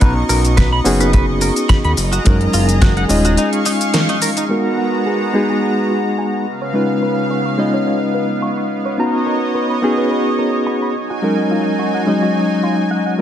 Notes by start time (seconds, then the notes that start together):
Already playing: C#6
0.00 B1 B3 C#4 D#4 F#4 B4 D#5 A#5, kick, closed hi-hat, shaker
0.29 B1 A#4, open hi-hat, shaker
0.45 closed hi-hat, shaker
0.57 B4, kick, snare, closed hi-hat, shaker
0.72 B5
0.84 F#1 B3 C#4 D#4 F#4 G#4, open hi-hat, shaker
1.00 B4, closed hi-hat, shaker
1.13 B4, kick, closed hi-hat, shaker
1.41 A#4, open hi-hat, shaker
1.56 closed hi-hat, shaker
1.69 B5, kick, snare, closed hi-hat, shaker
1.84 D#2 B5, closed hi-hat
1.97 F#1 G#4 A#5, open hi-hat, shaker
2.12 F#4, closed hi-hat, shaker
2.25 F#1 F#3 G#3 C#4 D#4 F#4 A#4, kick, closed hi-hat, shaker
2.41 closed hi-hat
2.53 F#1 F4, open hi-hat, shaker
2.69 closed hi-hat, shaker
2.82 F#4, kick, snare, closed hi-hat, shaker
2.97 F#5, closed hi-hat
3.09 D#1 G#3 C#4 D#4 F4 D#5, open hi-hat, shaker
3.25 F#4, closed hi-hat, shaker
3.37 D#4 F5 C#6, closed hi-hat, shaker
3.53 closed hi-hat
3.66 D#4, open hi-hat, shaker
3.81 closed hi-hat, shaker
3.94 A#3, snare, closed hi-hat, shaker
4.09 D#4, closed hi-hat
4.22 A#4, open hi-hat, shaker
4.37 D#4, closed hi-hat, shaker
4.49 G#3 B3 D#4 F#4 G#4 A#4 A#5
4.78 F#4
5.06 G#4
5.21 G#5
5.33 G#3 B3 D#4 F#4 G#4
5.50 G#4
5.62 G#4
5.90 F#4
6.18 G#5
6.34 G#5
6.47 C#3 B3 F5
6.62 C#5
6.73 G#3 C#4 D#4 F4 B4 C#5
7.03 B4
7.31 C#5
7.46 C#6
7.57 G#3 C#4 D#4 F4 D#5
7.74 C#5
7.86 C#5
8.14 B4
8.42 C#6
8.57 C#6
8.85 C#5
8.98 B3 C#4 D#4 F#4 B4 C#5 D#5 A#5
9.26 A#4
9.55 B4
9.70 B5
9.82 B3 C#4 D#4 F#4 G#4
9.98 B4
10.11 B4
10.39 A#4
10.67 B5
10.82 B5
10.95 F#3 D#4 G#5
11.10 F#4
11.22 F#3 G#3 C#4 D#4 F#4 A#4
11.51 F4
11.79 F#4
11.94 F#5
12.06 F#3 G#3 C#4 D#4 D#5
12.22 F#4
12.35 F#4
12.63 F4
12.91 F#5
13.06 F#5